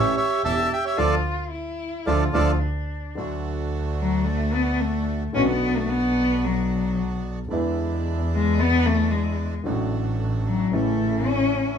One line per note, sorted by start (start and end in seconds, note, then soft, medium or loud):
0.00 0.12 A1 medium
0.00 0.13 A1 medium
0.00 0.13 A2 medium
0.00 0.13 E3 medium
0.00 0.13 A3 medium
0.00 0.12 C#4 medium
0.00 0.13 C#4 medium
0.00 0.13 G4 medium
0.00 0.98 G4 medium
0.00 0.13 A4 medium
0.00 0.15 C#5 medium
0.00 0.16 E5 medium
0.17 0.42 C#5 medium
0.17 0.42 E5 medium
0.44 0.67 E1 medium
0.44 0.67 E2 medium
0.44 0.67 C#4 soft
0.44 0.67 G4 soft
0.44 0.67 A4 medium
0.44 0.69 E5 medium
0.44 0.72 A5 medium
0.73 0.84 E5 medium
0.73 0.85 G5 medium
0.85 0.97 C#5 medium
0.85 0.98 E5 medium
0.97 1.18 D2 medium
0.97 1.15 D3 medium
0.97 1.15 F3 medium
0.97 1.15 A3 medium
0.97 1.15 D4 medium
0.97 1.50 F4 medium
0.97 1.15 F4 medium
0.97 1.15 A4 medium
0.97 1.15 D5 medium
0.97 1.15 F5 medium
1.51 2.09 E4 medium
2.06 2.27 D2 medium
2.06 2.25 D3 medium
2.06 2.25 F3 medium
2.06 2.25 A3 medium
2.06 2.24 D4 medium
2.06 2.24 F4 medium
2.06 2.61 F4 medium
2.06 2.24 A4 medium
2.06 2.24 D5 medium
2.06 2.24 F5 medium
2.33 2.55 D2 medium
2.33 2.52 D3 medium
2.33 2.52 F3 medium
2.33 2.52 A3 medium
2.33 2.52 D4 medium
2.33 2.52 F4 medium
2.33 2.51 A4 medium
2.33 2.52 A4 medium
2.33 2.51 D5 medium
2.33 2.52 F5 medium
2.59 3.16 D4 medium
3.15 5.23 D2 medium
3.15 5.24 D2 medium
3.15 5.23 D3 medium
3.15 5.23 F#3 soft
3.15 5.24 A3 medium
3.15 5.24 A3 soft
3.15 5.24 D4 soft
3.15 5.24 F#4 medium
3.98 4.27 F#3 medium
4.25 4.55 A3 medium
4.54 4.82 B3 medium
4.80 5.21 A3 medium
5.33 7.39 B1 medium
5.33 7.40 B1 medium
5.33 7.40 B2 medium
5.33 7.39 D3 medium
5.33 7.39 F#3 medium
5.33 7.39 B3 medium
5.33 7.40 B3 soft
5.33 5.47 C#4 medium
5.33 7.39 D4 medium
5.33 7.39 F#4 medium
5.33 7.41 F#4 medium
5.49 5.78 B3 medium
5.77 5.90 A3 medium
5.89 6.46 B3 loud
6.44 7.24 F#3 medium
7.48 9.55 E2 medium
7.48 9.54 D3 medium
7.48 9.55 E3 medium
7.48 9.54 G#3 medium
7.48 9.55 G#3 soft
7.48 9.56 B3 soft
7.48 9.54 D4 medium
7.48 9.55 E4 medium
7.53 9.56 E4 medium
8.34 8.61 G#3 medium
8.60 8.87 B3 loud
8.86 9.12 A3 loud
9.11 9.52 G#3 medium
9.64 10.68 A1 medium
9.64 10.69 A1 medium
9.64 10.69 A2 medium
9.64 10.67 D3 medium
9.64 10.68 F#3 soft
9.64 10.68 A3 medium
9.64 10.69 A3 soft
9.64 10.68 D4 medium
9.64 10.68 F#4 medium
9.69 10.70 F#4 medium
10.47 10.75 F#3 medium
10.72 11.77 A1 medium
10.72 11.77 A2 medium
10.72 11.76 C#3 medium
10.72 11.77 E3 soft
10.72 11.77 A3 medium
10.72 11.29 A3 medium
10.72 11.78 A3 soft
10.72 11.77 C#4 medium
10.72 11.77 E4 medium
10.72 11.78 E4 medium
11.27 11.69 C#4 medium